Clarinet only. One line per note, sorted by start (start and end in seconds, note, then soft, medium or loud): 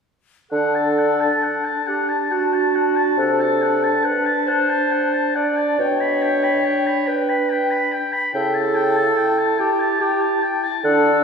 0.51 1.83 A4 medium
1.88 2.32 G4 soft
2.31 3.19 F#4 medium
3.18 4.06 A4 medium
4.04 4.48 B4 medium
4.47 5.35 C5 medium
5.35 5.80 D5 medium
5.78 7.09 C#5 medium
7.08 8.07 B4 medium
8.35 9.56 A4 medium
9.60 10.00 G4 medium
10.00 10.42 G4 medium
10.84 11.24 A4 medium